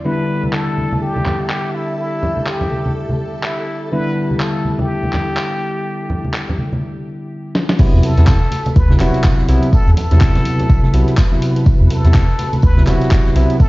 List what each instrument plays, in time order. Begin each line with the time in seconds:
Already playing: analog synth pad D4 E4 D5
0.05 tine electric piano D3 G3 B3 E4, string machine A4 A5, muted trumpet B4
0.12 analog synth pad G4
0.27 analog synth pad E5
0.43 high conga
0.53 muted trumpet A4, clap
0.78 high conga
0.92 high conga
1.02 muted trumpet G4
1.16 high conga
1.25 clap, low conga
1.50 muted trumpet G4, clap
1.75 muted trumpet E4
1.99 muted trumpet E4
2.23 low conga
2.37 high conga
2.46 muted trumpet G4, clap
2.61 low conga
2.72 high conga
2.86 high conga
3.09 high conga
3.43 muted trumpet E4, clap
3.92 tine electric piano D3 G3 B3 E4, muted trumpet B4
4.31 high conga
4.35 muted trumpet B4
4.40 muted trumpet A4, clap
4.65 high conga
4.79 muted trumpet G4, high conga
5.03 high conga
5.13 clap, low conga
5.37 clap
6.10 low conga
6.24 high conga
6.34 clap
6.49 low conga
6.58 high conga
6.73 high conga
7.55 snare
7.69 snare
7.79 tine electric piano C3 F#3 B3 E4, analog synth pad C4, string machine B4 B5, kick, closed hi-hat, crash, tambourine
7.93 analog synth bass E2
8.01 analog synth pad F#4, muted trumpet A4, open hi-hat, tambourine
8.17 analog synth bass E2, tine electric piano C3 F#3 B3 E4, snare, closed hi-hat, high conga
8.27 kick, snare, clap, closed hi-hat, tambourine
8.42 snare
8.51 snare, open hi-hat, tambourine, high conga
8.66 closed hi-hat, high conga
8.76 analog synth bass D2, muted trumpet B4, kick, closed hi-hat, tambourine
8.90 tine electric piano C3 F#3 B3 E4, snare, high conga
9.00 analog synth bass E1, tine electric piano C3 F#3 B3 E4, muted trumpet F#4, clap, open hi-hat, tambourine, low conga
9.14 snare, closed hi-hat
9.24 analog synth bass E1, kick, snare, clap, open hi-hat, tambourine
9.39 snare
9.49 analog synth bass B1, tine electric piano C3 F#3 B3 E4, open hi-hat, tambourine
9.63 closed hi-hat
9.73 muted trumpet A4, kick, closed hi-hat, tambourine
9.87 analog synth bass E2, closed hi-hat
9.97 muted trumpet A4, open hi-hat, tambourine, low conga
10.11 analog synth bass E2, tine electric piano C3 F#3 B3 E4, snare, closed hi-hat, high conga
10.21 kick, snare, clap, tambourine
10.35 snare, open hi-hat, low conga
10.45 open hi-hat, tambourine, high conga
10.60 closed hi-hat, high conga
10.70 analog synth bass B1, kick, closed hi-hat, tambourine
10.83 snare, high conga
10.94 analog synth bass B1, tine electric piano C3 F#3 B3 E4, open hi-hat, tambourine
11.08 snare, closed hi-hat
11.18 kick, snare, clap, closed hi-hat, tambourine
11.32 tine electric piano C3 F#3 B3 E4, snare
11.42 open hi-hat, tambourine
11.56 closed hi-hat
11.66 kick, closed hi-hat, tambourine
11.81 analog synth bass E2
11.91 muted trumpet A4, open hi-hat, tambourine
12.04 analog synth bass E2, tine electric piano C3 F#3 B3 E4, snare, closed hi-hat, high conga
12.14 kick, snare, clap, closed hi-hat, tambourine
12.29 snare
12.39 snare, open hi-hat, tambourine, high conga
12.53 closed hi-hat, high conga
12.62 analog synth bass D2, muted trumpet B4, kick, closed hi-hat, tambourine
12.77 tine electric piano C3 F#3 B3 E4, snare, high conga
12.87 analog synth bass E1, tine electric piano C3 F#3 B3 E4, muted trumpet F#4, clap, open hi-hat, tambourine, low conga
13.01 snare, closed hi-hat
13.11 analog synth bass E1, kick, snare, clap, open hi-hat, tambourine
13.26 snare
13.36 analog synth bass B1, tine electric piano C3 F#3 B3 E4, open hi-hat, tambourine
13.50 closed hi-hat
13.60 muted trumpet A4, kick, closed hi-hat, tambourine